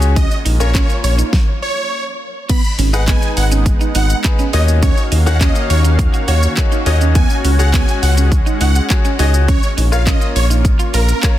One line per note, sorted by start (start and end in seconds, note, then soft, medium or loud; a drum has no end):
0.00 0.26 C#2 loud
0.00 0.14 G#3 medium
0.00 0.16 C#4 medium
0.00 1.29 C#4 medium
0.00 0.13 F#4 medium
0.00 0.17 F#4 medium
0.00 0.17 G#4 loud
0.00 shaker medium
0.16 1.32 A#3 medium
0.16 0.28 C#4 medium
0.16 1.32 F4 medium
0.16 0.37 D#5 loud
0.16 kick loud
0.16 closed hi-hat medium
0.16 shaker medium
0.31 shaker medium
0.45 0.84 A#1 medium
0.45 0.57 D#4 medium
0.45 open hi-hat medium
0.45 shaker medium
0.60 0.69 C#4 medium
0.60 0.69 F4 medium
0.60 0.69 A#4 medium
0.60 0.70 C#5 medium
0.60 muted clean electric guitar stroke soft
0.60 shaker medium
0.75 0.86 C#4 medium
0.75 0.95 C#5 medium
0.75 kick loud
0.75 clap loud
0.75 closed hi-hat medium
0.75 shaker medium
0.89 muted clean electric guitar stroke soft
0.89 shaker medium
1.04 1.23 A#1 medium
1.04 1.14 C#5 medium
1.04 open hi-hat medium
1.04 shaker medium
1.18 1.30 D#4 medium
1.18 shaker medium
1.33 kick loud
1.33 snare medium
1.62 2.03 C#5 medium
2.49 4.51 G#3 medium
2.49 2.61 B3 loud
2.49 4.51 B3 medium
2.49 4.51 D#4 medium
2.49 2.70 B5 loud
2.49 kick loud
2.49 closed hi-hat medium
2.49 crash loud
2.49 shaker medium
2.64 shaker medium
2.79 3.17 G#1 medium
2.79 2.90 C#4 medium
2.79 open hi-hat medium
2.79 shaker medium
2.93 3.02 D#4 medium
2.93 3.03 G#4 medium
2.93 3.03 B4 loud
2.93 3.04 F#5 medium
2.93 muted clean electric guitar stroke soft
2.93 shaker medium
3.08 3.19 B3 medium
3.08 3.82 D#4 medium
3.08 3.82 G#4 medium
3.08 3.28 G#5 medium
3.08 kick loud
3.08 clap loud
3.08 closed hi-hat medium
3.08 shaker medium
3.22 muted clean electric guitar stroke soft
3.22 shaker medium
3.37 3.75 G#1 medium
3.37 3.47 F#5 medium
3.37 open hi-hat medium
3.37 shaker medium
3.52 3.63 C#4 medium
3.52 shaker medium
3.66 muted clean electric guitar stroke soft
3.66 kick loud
3.66 closed hi-hat medium
3.66 shaker medium
3.81 3.92 D#4 medium
3.81 shaker medium
3.95 4.14 G#1 loud
3.95 4.07 D#4 medium
3.95 4.15 F#5 medium
3.95 open hi-hat medium
3.95 shaker medium
4.10 shaker medium
4.24 4.43 D#4 medium
4.24 4.43 G#4 medium
4.24 4.43 B4 medium
4.24 muted clean electric guitar stroke soft
4.24 kick loud
4.24 clap loud
4.24 closed hi-hat medium
4.24 shaker medium
4.39 4.50 C#4 medium
4.39 shaker medium
4.53 4.92 D#2 loud
4.53 7.13 D#3 medium
4.53 5.12 A#3 medium
4.53 7.13 A#3 medium
4.53 5.12 C#4 medium
4.53 11.39 C#4 medium
4.53 4.65 D#4 medium
4.53 5.12 D#4 medium
4.53 9.45 F#4 medium
4.53 5.12 F#4 medium
4.53 5.12 C#5 medium
4.53 4.63 D#5 medium
4.53 7.13 F5 medium
4.53 open hi-hat medium
4.53 shaker medium
4.68 shaker medium
4.83 4.94 C#4 medium
4.83 5.03 C#5 loud
4.83 kick loud
4.83 closed hi-hat medium
4.83 shaker medium
4.97 shaker medium
5.12 5.50 D#2 medium
5.12 5.23 D#4 medium
5.12 open hi-hat medium
5.12 shaker medium
5.26 5.35 A#3 medium
5.26 5.35 C#4 medium
5.26 5.36 D#4 medium
5.26 5.36 F#4 medium
5.26 5.36 C#5 loud
5.26 5.37 F#5 medium
5.26 muted clean electric guitar stroke soft
5.26 shaker medium
5.41 6.15 A#3 medium
5.41 5.52 C#4 medium
5.41 6.15 C#4 medium
5.41 6.15 D#4 medium
5.41 6.15 F#4 medium
5.41 5.61 D#5 medium
5.41 kick loud
5.41 clap loud
5.41 closed hi-hat medium
5.41 shaker medium
5.55 muted clean electric guitar stroke soft
5.55 shaker medium
5.70 6.09 D#2 loud
5.70 5.80 C#5 medium
5.70 open hi-hat medium
5.70 shaker medium
5.84 5.96 D#4 medium
5.84 shaker medium
5.99 muted clean electric guitar stroke soft
5.99 kick loud
5.99 closed hi-hat medium
5.99 shaker medium
6.14 6.25 F#4 medium
6.14 shaker medium
6.28 6.47 D#2 loud
6.28 6.40 F#4 medium
6.28 6.48 C#5 medium
6.28 open hi-hat medium
6.28 shaker medium
6.43 shaker medium
6.57 6.76 A#3 medium
6.57 6.76 C#4 medium
6.57 6.76 D#4 medium
6.57 6.76 F#4 medium
6.57 6.76 C#5 loud
6.57 kick loud
6.57 clap loud
6.57 closed hi-hat medium
6.57 shaker medium
6.72 6.83 D#4 medium
6.72 shaker medium
6.86 7.25 D#2 medium
6.86 7.15 A#3 medium
6.86 7.15 C#4 medium
6.86 7.15 D#4 medium
6.86 7.16 F#4 medium
6.86 7.16 C#5 loud
6.86 6.96 D#5 medium
6.86 muted clean electric guitar stroke soft
6.86 open hi-hat medium
6.86 shaker medium
7.01 7.12 C#4 medium
7.01 shaker medium
7.15 9.46 G#3 medium
7.15 7.27 B3 loud
7.15 7.36 G#5 loud
7.15 kick loud
7.15 closed hi-hat medium
7.15 shaker medium
7.30 shaker medium
7.44 7.83 C#2 medium
7.44 7.56 C#4 medium
7.44 open hi-hat medium
7.44 shaker medium
7.59 7.68 F#4 medium
7.59 7.68 G#4 medium
7.59 7.69 C#5 medium
7.59 7.69 F#5 medium
7.59 muted clean electric guitar stroke soft
7.59 shaker medium
7.73 7.85 B3 medium
7.73 8.48 F#4 medium
7.73 8.48 G#4 medium
7.73 8.48 C#5 medium
7.73 7.94 G#5 medium
7.73 kick loud
7.73 clap loud
7.73 closed hi-hat medium
7.73 shaker medium
7.88 muted clean electric guitar stroke soft
7.88 shaker medium
8.02 8.41 C#2 loud
8.02 8.13 F#5 medium
8.02 open hi-hat medium
8.02 shaker medium
8.17 8.29 C#4 medium
8.17 shaker medium
8.32 muted clean electric guitar stroke soft
8.32 kick loud
8.32 closed hi-hat medium
8.32 shaker medium
8.46 8.58 D#4 medium
8.46 shaker medium
8.61 8.80 C#2 loud
8.61 8.72 D#4 medium
8.61 8.81 F#5 medium
8.61 open hi-hat medium
8.61 shaker medium
8.75 shaker medium
8.90 9.09 F#4 medium
8.90 9.09 G#4 medium
8.90 9.09 C#5 loud
8.90 muted clean electric guitar stroke soft
8.90 kick loud
8.90 clap loud
8.90 closed hi-hat medium
8.90 shaker medium
9.05 9.16 C#4 medium
9.05 shaker medium
9.19 9.58 C#2 loud
9.19 9.31 D#4 medium
9.19 9.48 F#4 medium
9.19 9.49 G#4 medium
9.19 9.49 C#5 loud
9.19 9.30 D#5 medium
9.19 open hi-hat medium
9.19 shaker medium
9.34 shaker medium
9.48 11.39 A#3 medium
9.48 9.60 C#4 medium
9.48 11.39 F4 medium
9.48 9.69 C#5 loud
9.48 kick loud
9.48 closed hi-hat medium
9.48 shaker medium
9.63 shaker medium
9.77 10.16 A#1 medium
9.77 9.89 D#4 medium
9.77 open hi-hat medium
9.77 shaker medium
9.92 10.01 F4 medium
9.92 10.01 A#4 medium
9.92 10.01 C#5 loud
9.92 10.02 F5 medium
9.92 muted clean electric guitar stroke soft
9.92 shaker medium
10.07 10.18 C#4 medium
10.07 10.81 A#4 medium
10.07 10.81 C#5 medium
10.07 10.27 D#5 medium
10.07 kick loud
10.07 clap loud
10.07 closed hi-hat medium
10.07 shaker medium
10.21 muted clean electric guitar stroke soft
10.21 shaker medium
10.36 10.74 A#1 medium
10.36 10.46 C#5 medium
10.36 open hi-hat medium
10.36 shaker medium
10.50 10.62 D#4 medium
10.50 shaker medium
10.65 muted clean electric guitar stroke soft
10.65 kick loud
10.65 closed hi-hat medium
10.65 shaker medium
10.79 10.91 F4 medium
10.79 shaker medium
10.94 11.13 A#1 loud
10.94 11.05 F4 medium
10.94 11.35 A#4 medium
10.94 open hi-hat medium
10.94 shaker medium
11.09 shaker medium
11.23 11.39 F4 medium
11.23 11.39 A#4 medium
11.23 11.39 C#5 loud
11.23 kick loud
11.23 clap loud
11.23 closed hi-hat medium
11.23 shaker medium